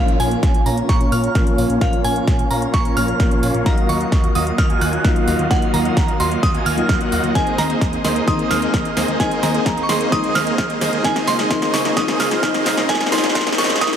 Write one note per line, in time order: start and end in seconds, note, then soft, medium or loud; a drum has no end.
0.00 1.32 A#2 medium
0.00 1.32 F3 medium
0.00 0.29 A#3 medium
0.00 1.32 A#3 medium
0.00 7.31 A#3 medium
0.00 0.29 C#4 medium
0.00 1.33 C#4 medium
0.00 3.62 C#4 medium
0.00 0.29 F4 medium
0.00 1.33 F4 medium
0.00 0.29 C#5 medium
0.00 7.31 C#5 medium
0.00 0.21 F5 medium
0.00 0.29 F5 loud
0.08 closed hi-hat soft
0.20 0.37 A#1 medium
0.20 0.67 G#5 medium
0.20 open hi-hat loud
0.31 0.59 A#3 medium
0.31 0.59 C#4 medium
0.31 0.59 F4 medium
0.31 0.59 C#5 medium
0.31 0.59 F5 medium
0.31 closed hi-hat soft
0.43 0.60 A#1 medium
0.43 kick loud
0.43 snare soft
0.43 closed hi-hat medium
0.54 closed hi-hat soft
0.66 0.83 A#1 medium
0.66 0.98 A#3 medium
0.66 0.98 C#4 medium
0.66 0.98 F4 medium
0.66 0.98 C#5 medium
0.66 0.98 F5 medium
0.66 0.90 A#5 medium
0.66 open hi-hat loud
0.78 closed hi-hat soft
0.89 1.06 A#1 loud
0.89 1.13 C#6 loud
0.89 kick loud
0.89 snare soft
0.89 closed hi-hat medium
1.01 1.32 A#3 medium
1.01 1.32 C#4 medium
1.01 1.32 F4 medium
1.01 1.32 C#5 medium
1.01 1.32 A#5 loud
1.01 closed hi-hat soft
1.12 1.29 A#1 medium
1.12 1.55 F6 loud
1.12 open hi-hat loud
1.24 closed hi-hat soft
1.35 1.44 A#1 loud
1.35 1.78 A#2 medium
1.35 1.78 F3 medium
1.35 1.56 A#3 medium
1.35 1.79 A#3 medium
1.35 1.56 C#4 medium
1.35 1.79 C#4 medium
1.35 1.56 F4 medium
1.35 1.79 F4 loud
1.35 1.56 C#5 medium
1.35 1.56 F5 medium
1.35 kick loud
1.35 snare soft
1.35 closed hi-hat medium
1.47 closed hi-hat soft
1.58 1.67 A#1 loud
1.58 1.79 A#3 medium
1.58 1.79 C#4 medium
1.58 1.79 F4 medium
1.58 1.79 C#5 medium
1.58 1.79 F5 loud
1.58 open hi-hat loud
1.70 1.78 A#1 medium
1.70 closed hi-hat soft
1.80 1.90 A#1 loud
1.80 2.93 A#2 medium
1.80 2.94 F3 medium
1.80 2.13 A#3 medium
1.80 2.94 A#3 medium
1.80 2.13 C#4 medium
1.80 2.94 C#4 medium
1.80 2.13 F4 medium
1.80 2.95 F4 loud
1.80 2.13 C#5 medium
1.80 2.13 F5 loud
1.80 2.03 F5 medium
1.80 kick loud
1.80 snare medium
1.80 closed hi-hat medium
1.93 closed hi-hat soft
2.04 2.21 A#1 medium
2.04 2.52 G#5 medium
2.04 open hi-hat loud
2.16 2.44 A#3 medium
2.16 2.44 C#4 medium
2.16 2.44 F4 medium
2.16 2.44 C#5 medium
2.16 2.44 F5 medium
2.16 closed hi-hat soft
2.28 2.44 A#1 medium
2.28 kick loud
2.28 snare medium
2.28 closed hi-hat medium
2.39 closed hi-hat soft
2.51 2.67 A#1 medium
2.51 2.82 A#3 medium
2.51 2.82 C#4 medium
2.51 2.82 F4 medium
2.51 2.82 C#5 medium
2.51 2.82 F5 medium
2.51 2.74 A#5 medium
2.51 open hi-hat loud
2.62 closed hi-hat soft
2.74 2.90 A#1 loud
2.74 2.97 C#6 loud
2.74 kick loud
2.74 snare medium
2.74 closed hi-hat medium
2.85 3.17 A#3 loud
2.85 3.17 C#4 medium
2.85 3.17 F4 medium
2.85 3.17 C#5 medium
2.85 3.17 A#5 loud
2.85 closed hi-hat soft
2.96 3.13 A#1 medium
2.96 3.17 A#2 medium
2.96 3.17 F3 medium
2.96 3.17 A#3 medium
2.96 3.17 C#4 medium
2.96 3.17 F4 medium
2.96 3.40 F6 loud
2.96 open hi-hat loud
3.08 closed hi-hat soft
3.19 3.28 A#1 loud
3.19 3.63 A#2 medium
3.19 3.63 F3 medium
3.19 3.40 A#3 medium
3.19 3.63 A#3 medium
3.19 3.40 C#4 medium
3.19 3.63 C#4 medium
3.19 3.40 F4 medium
3.19 3.64 F4 medium
3.19 3.40 C#5 medium
3.19 3.40 F5 medium
3.19 kick loud
3.19 snare medium
3.19 closed hi-hat medium
3.31 closed hi-hat soft
3.43 3.51 A#1 loud
3.43 3.63 A#3 medium
3.43 3.63 C#4 medium
3.43 3.63 F4 medium
3.43 3.63 C#5 medium
3.43 3.63 F5 loud
3.43 open hi-hat loud
3.54 3.63 A#1 medium
3.54 closed hi-hat soft
3.65 7.32 D#3 medium
3.65 5.01 F#3 medium
3.65 7.32 F#3 medium
3.65 5.02 A#3 medium
3.65 3.98 A#3 medium
3.65 5.02 D#4 medium
3.65 3.98 F4 medium
3.65 3.98 F#4 medium
3.65 3.98 D#5 medium
3.65 3.98 F5 loud
3.65 5.02 F5 loud
3.65 3.90 A#5 medium
3.65 kick loud
3.65 snare medium
3.65 closed hi-hat medium
3.78 closed hi-hat soft
3.89 4.06 D#2 medium
3.89 4.37 C#6 medium
3.89 open hi-hat loud
4.01 4.28 A#3 medium
4.01 4.28 F4 medium
4.01 4.28 F#4 medium
4.01 4.28 D#5 medium
4.01 4.28 F5 medium
4.01 closed hi-hat soft
4.12 4.29 D#2 medium
4.12 kick loud
4.12 snare medium
4.12 closed hi-hat medium
4.24 closed hi-hat soft
4.35 4.52 D#2 medium
4.35 4.67 A#3 medium
4.35 4.67 F4 medium
4.35 4.67 F#4 medium
4.35 4.67 D#5 medium
4.35 4.67 F5 medium
4.35 4.59 D#6 medium
4.35 open hi-hat loud
4.47 closed hi-hat soft
4.58 4.75 D#2 loud
4.58 4.82 F6 loud
4.58 kick loud
4.58 snare medium
4.58 closed hi-hat medium
4.70 5.02 A#3 loud
4.70 5.02 F4 medium
4.70 5.02 F#4 medium
4.70 5.02 D#5 medium
4.70 5.02 G#5 loud
4.70 closed hi-hat soft
4.81 4.98 D#2 medium
4.81 5.24 F#6 loud
4.81 open hi-hat loud
4.93 closed hi-hat soft
5.04 5.13 D#2 loud
5.04 5.48 F#3 medium
5.04 5.48 A#3 medium
5.04 5.25 A#3 medium
5.04 5.48 D#4 medium
5.04 5.25 F4 medium
5.04 5.48 F4 loud
5.04 5.25 F#4 medium
5.04 5.25 D#5 medium
5.04 5.25 F5 medium
5.04 kick loud
5.04 snare medium
5.04 closed hi-hat medium
5.16 closed hi-hat soft
5.28 5.36 D#2 loud
5.28 5.48 A#3 loud
5.28 5.48 F4 medium
5.28 5.48 F#4 medium
5.28 5.48 D#5 medium
5.28 5.48 F5 loud
5.28 open hi-hat loud
5.39 5.47 D#2 medium
5.39 closed hi-hat soft
5.49 5.59 D#2 loud
5.49 6.63 F#3 medium
5.49 6.63 A#3 medium
5.49 5.83 A#3 medium
5.49 6.63 D#4 medium
5.49 5.83 F4 medium
5.49 5.83 F#4 medium
5.49 5.83 D#5 medium
5.49 5.83 F5 loud
5.49 6.64 F5 loud
5.49 5.74 F#5 medium
5.49 kick loud
5.49 snare medium
5.49 closed hi-hat medium
5.62 closed hi-hat soft
5.74 5.90 D#2 medium
5.74 6.17 A#5 medium
5.74 open hi-hat loud
5.85 6.13 A#3 medium
5.85 6.13 F4 medium
5.85 6.13 F#4 medium
5.85 6.13 D#5 medium
5.85 6.13 F5 medium
5.85 closed hi-hat soft
5.97 6.14 D#2 medium
5.97 kick loud
5.97 snare medium
5.97 closed hi-hat medium
6.08 closed hi-hat soft
6.20 6.37 D#2 medium
6.20 6.52 A#3 medium
6.20 6.52 F4 medium
6.20 6.52 F#4 medium
6.20 6.52 D#5 medium
6.20 6.52 F5 medium
6.20 6.44 C6 medium
6.20 open hi-hat loud
6.32 closed hi-hat soft
6.43 6.60 D#2 loud
6.43 6.53 D#6 loud
6.43 kick loud
6.43 snare medium
6.43 closed hi-hat medium
6.54 6.86 A#3 loud
6.54 6.86 F4 medium
6.54 6.86 F#4 medium
6.54 6.86 D#5 medium
6.54 6.86 G#5 loud
6.54 closed hi-hat soft
6.66 6.83 D#2 medium
6.66 7.09 F6 loud
6.66 open hi-hat loud
6.76 7.32 F#3 medium
6.76 7.32 A#3 medium
6.76 7.33 D#4 medium
6.76 7.33 F4 medium
6.76 closed hi-hat soft
6.89 6.97 D#2 loud
6.89 7.09 A#3 medium
6.89 7.09 F4 medium
6.89 7.09 F#4 medium
6.89 7.09 D#5 medium
6.89 7.09 F#5 medium
6.89 kick loud
6.89 snare medium
6.89 closed hi-hat medium
7.01 closed hi-hat soft
7.12 7.21 D#2 loud
7.12 7.33 A#3 medium
7.12 7.32 F4 medium
7.12 7.32 F#4 medium
7.12 7.32 D#5 medium
7.12 7.32 F#5 medium
7.12 open hi-hat loud
7.24 7.32 D#2 medium
7.24 closed hi-hat soft
7.34 7.44 D#2 loud
7.34 8.25 D#3 medium
7.34 8.25 G#3 medium
7.34 13.97 G#3 medium
7.34 11.01 A#3 medium
7.34 8.26 A#3 medium
7.34 7.67 A#3 medium
7.34 11.01 C4 medium
7.34 8.26 C4 medium
7.34 7.67 D#4 medium
7.34 8.26 D#4 medium
7.34 7.67 G#4 medium
7.34 7.67 C5 medium
7.34 7.67 D#5 loud
7.34 7.57 G#5 medium
7.34 kick loud
7.34 snare medium
7.34 closed hi-hat medium
7.34 riser medium
7.47 closed hi-hat soft
7.58 7.75 D#2 medium
7.58 8.06 A#5 medium
7.58 snare medium
7.58 open hi-hat loud
7.70 7.98 A#3 medium
7.70 7.98 D#4 medium
7.70 7.98 G#4 medium
7.70 7.98 C5 medium
7.70 7.98 D#5 medium
7.70 closed hi-hat soft
7.81 7.98 D#2 medium
7.81 kick loud
7.81 snare medium
7.81 closed hi-hat medium
7.93 closed hi-hat soft
8.04 8.21 D#2 medium
8.04 8.26 A#3 medium
8.04 8.26 D#4 medium
8.04 8.26 G#4 medium
8.04 8.26 C5 medium
8.04 8.26 D#5 medium
8.04 8.28 C6 medium
8.04 snare medium
8.04 open hi-hat loud
8.16 closed hi-hat soft
8.26 8.44 D#2 loud
8.26 9.17 D#3 medium
8.26 9.18 G#3 medium
8.26 8.59 A#3 medium
8.26 9.18 A#3 medium
8.26 9.18 C4 medium
8.26 8.59 D#4 medium
8.26 9.19 D#4 medium
8.26 8.59 G#4 medium
8.26 8.59 C5 medium
8.26 8.59 D#5 loud
8.26 8.51 D#6 loud
8.26 kick loud
8.26 snare medium
8.26 closed hi-hat medium
8.39 closed hi-hat soft
8.51 8.67 D#2 medium
8.51 8.94 F6 loud
8.51 snare medium
8.51 open hi-hat loud
8.62 8.90 A#3 medium
8.62 8.90 D#4 medium
8.62 8.90 G#4 medium
8.62 8.90 C5 medium
8.62 8.90 D#5 medium
8.62 closed hi-hat soft
8.74 8.82 D#2 loud
8.74 kick loud
8.74 snare medium
8.74 closed hi-hat medium
8.85 closed hi-hat soft
8.97 9.05 D#2 loud
8.97 9.18 A#3 medium
8.97 9.18 D#4 medium
8.97 9.18 G#4 medium
8.97 9.18 C5 medium
8.97 9.18 D#5 medium
8.97 snare medium
8.97 open hi-hat loud
9.08 9.17 D#2 medium
9.08 closed hi-hat soft
9.19 9.28 D#2 loud
9.19 10.09 D#3 medium
9.19 10.10 G#3 medium
9.19 9.52 A#3 medium
9.19 10.10 A#3 medium
9.19 10.11 C4 medium
9.19 9.52 D#4 medium
9.19 10.11 D#4 medium
9.19 9.52 G#4 medium
9.19 9.52 C5 medium
9.19 9.52 D#5 loud
9.19 9.44 G#5 medium
9.19 kick loud
9.19 snare medium
9.19 closed hi-hat medium
9.31 closed hi-hat soft
9.43 9.60 D#2 medium
9.43 9.85 A#5 medium
9.43 snare medium
9.43 open hi-hat loud
9.54 9.82 A#3 medium
9.54 9.82 D#4 medium
9.54 9.82 G#4 medium
9.54 9.82 C5 medium
9.54 9.82 D#5 medium
9.54 closed hi-hat soft
9.66 9.83 D#2 medium
9.66 kick loud
9.66 snare medium
9.66 closed hi-hat medium
9.78 closed hi-hat soft
9.83 9.89 C#6 medium
9.89 10.06 D#2 medium
9.89 10.10 A#3 medium
9.89 10.10 D#4 medium
9.89 10.10 G#4 medium
9.89 10.10 C5 medium
9.89 10.10 D#5 medium
9.89 10.13 C6 medium
9.89 snare medium
9.89 open hi-hat loud
10.01 closed hi-hat soft
10.11 10.29 D#2 loud
10.11 11.02 D#3 medium
10.11 11.02 G#3 medium
10.11 10.44 A#3 medium
10.11 11.03 A#3 medium
10.11 11.03 C4 medium
10.11 10.44 D#4 medium
10.11 11.03 D#4 medium
10.11 10.44 G#4 medium
10.11 10.44 C5 medium
10.11 10.44 D#5 loud
10.11 10.36 D#6 loud
10.11 kick loud
10.11 snare medium
10.11 closed hi-hat medium
10.24 closed hi-hat soft
10.35 10.52 D#2 medium
10.35 10.78 F6 loud
10.35 snare medium
10.35 open hi-hat loud
10.47 10.74 A#3 medium
10.47 10.74 D#4 medium
10.47 10.74 G#4 medium
10.47 10.74 C5 medium
10.47 10.74 D#5 medium
10.47 closed hi-hat soft
10.58 10.67 D#2 loud
10.58 kick loud
10.58 snare medium
10.58 closed hi-hat medium
10.70 closed hi-hat soft
10.81 10.90 D#2 loud
10.81 11.03 A#3 medium
10.81 11.03 D#4 medium
10.81 11.03 G#4 medium
10.81 11.03 C5 medium
10.81 11.03 D#5 medium
10.81 snare medium
10.81 open hi-hat loud
10.93 11.01 D#2 medium
10.93 closed hi-hat soft
11.03 11.13 C#2 loud
11.03 13.97 C#3 medium
11.03 11.48 D#3 medium
11.03 11.48 G#3 medium
11.03 11.49 A#3 medium
11.03 11.36 A#3 medium
11.03 11.49 C4 medium
11.03 11.36 D#4 medium
11.03 13.97 D#4 medium
11.03 11.49 D#4 medium
11.03 13.97 F4 medium
11.03 11.36 G#4 medium
11.03 11.36 C5 medium
11.03 11.36 D#5 loud
11.03 11.28 G#5 medium
11.03 kick loud
11.03 snare medium
11.03 closed hi-hat medium
11.16 snare medium
11.16 closed hi-hat soft
11.27 11.44 C#2 medium
11.27 11.75 C6 medium
11.27 snare medium
11.27 open hi-hat loud
11.39 11.49 A#3 medium
11.39 11.49 D#4 medium
11.39 11.49 G#4 medium
11.39 11.49 C5 medium
11.39 11.49 D#5 medium
11.39 snare medium
11.39 closed hi-hat soft
11.49 11.67 C#2 medium
11.49 11.94 D#3 medium
11.49 11.95 G#3 medium
11.49 11.82 A#3 medium
11.49 11.95 A#3 medium
11.49 11.95 C4 medium
11.49 11.82 D#4 medium
11.49 11.96 D#4 loud
11.49 11.82 G#4 medium
11.49 11.82 C5 medium
11.49 11.82 D#5 loud
11.49 kick loud
11.49 snare medium
11.49 closed hi-hat medium
11.62 snare medium
11.62 closed hi-hat soft
11.74 11.90 C#2 medium
11.74 11.97 C#6 medium
11.74 snare loud
11.74 open hi-hat loud
11.85 11.95 A#3 medium
11.85 11.95 D#4 medium
11.85 11.95 G#4 medium
11.85 11.95 C5 medium
11.85 11.95 D#5 medium
11.85 snare medium
11.85 closed hi-hat soft
11.96 12.13 C#2 loud
11.96 12.40 D#3 medium
11.96 12.41 G#3 medium
11.96 12.41 A#3 medium
11.96 12.29 A#3 loud
11.96 12.41 C4 medium
11.96 12.29 D#4 medium
11.96 12.42 D#4 loud
11.96 12.29 G#4 medium
11.96 12.29 C5 medium
11.96 12.29 D#5 loud
11.96 12.21 D#6 loud
11.96 kick loud
11.96 snare loud
11.96 closed hi-hat medium
12.08 snare medium
12.08 closed hi-hat soft
12.20 12.37 C#2 medium
12.20 12.63 F6 loud
12.20 snare loud
12.20 open hi-hat loud
12.31 12.41 A#3 medium
12.31 12.41 D#4 medium
12.31 12.41 G#4 medium
12.31 12.41 C5 medium
12.31 12.41 D#5 medium
12.31 snare medium
12.31 closed hi-hat soft
12.42 12.51 C#2 loud
12.42 12.86 D#3 medium
12.42 12.87 G#3 medium
12.42 12.75 A#3 medium
12.42 12.87 A#3 medium
12.42 12.88 C4 medium
12.42 12.75 D#4 medium
12.42 12.88 D#4 loud
12.42 12.75 G#4 medium
12.42 12.75 C5 medium
12.42 12.75 D#5 loud
12.42 kick loud
12.42 snare loud
12.42 closed hi-hat medium
12.54 snare medium
12.54 closed hi-hat soft
12.66 12.74 C#2 loud
12.66 snare loud
12.66 open hi-hat loud
12.77 12.86 C#2 medium
12.77 12.87 A#3 medium
12.77 12.87 D#4 medium
12.77 12.87 G#4 medium
12.77 12.87 C5 medium
12.77 12.87 D#5 medium
12.77 snare medium
12.77 closed hi-hat soft
12.88 12.97 C#2 loud
12.88 13.09 D#3 medium
12.88 13.10 G#3 medium
12.88 13.10 A#3 medium
12.88 13.11 C4 medium
12.88 13.10 D#4 medium
12.88 13.11 D#4 loud
12.88 13.10 G#4 medium
12.88 13.10 C5 medium
12.88 13.10 D#5 loud
12.88 13.13 G#5 medium
12.88 kick loud
12.88 snare loud
12.88 closed hi-hat medium
12.95 snare medium
13.01 snare medium
13.01 closed hi-hat soft
13.06 snare medium
13.11 13.29 C#2 medium
13.11 13.33 D#3 medium
13.11 13.33 G#3 medium
13.11 13.33 A#3 medium
13.11 13.34 C4 medium
13.11 13.33 D#4 medium
13.11 13.34 D#4 loud
13.11 13.33 G#4 medium
13.11 13.33 C5 medium
13.11 13.33 D#5 loud
13.11 13.55 C6 loud
13.11 snare loud
13.11 open hi-hat loud
13.18 snare medium
13.24 snare medium
13.24 closed hi-hat soft
13.29 snare medium
13.34 13.52 C#2 medium
13.34 13.56 D#3 medium
13.34 13.56 G#3 medium
13.34 13.56 A#3 medium
13.34 13.56 A#3 loud
13.34 13.57 C4 medium
13.34 13.56 D#4 medium
13.34 13.57 D#4 loud
13.34 13.56 G#4 medium
13.34 13.56 C5 medium
13.34 13.56 D#5 loud
13.34 kick loud
13.34 snare loud
13.34 closed hi-hat medium
13.41 snare medium
13.47 snare medium
13.47 closed hi-hat soft
13.52 snare loud
13.57 13.75 C#2 medium
13.57 13.79 D#3 medium
13.57 13.79 G#3 medium
13.57 13.80 A#3 medium
13.57 13.80 C4 medium
13.57 13.80 D#4 medium
13.57 13.80 D#4 loud
13.57 13.80 G#4 medium
13.57 13.80 C5 medium
13.57 13.80 D#5 loud
13.57 13.82 C#6 medium
13.57 snare loud
13.57 open hi-hat loud
13.64 snare loud
13.70 snare medium
13.70 closed hi-hat soft
13.76 snare loud
13.80 13.97 C#2 medium
13.80 13.97 D#3 medium
13.80 13.97 G#3 medium
13.80 13.97 A#3 loud
13.80 13.97 A#3 medium
13.80 13.97 C4 medium
13.80 13.97 D#4 medium
13.80 13.97 D#4 loud
13.80 13.97 G#4 medium
13.80 13.97 C5 medium
13.80 13.97 D#5 loud
13.80 13.97 D#6 loud
13.80 kick loud
13.80 snare loud
13.80 closed hi-hat medium
13.87 snare medium
13.93 snare medium
13.93 closed hi-hat soft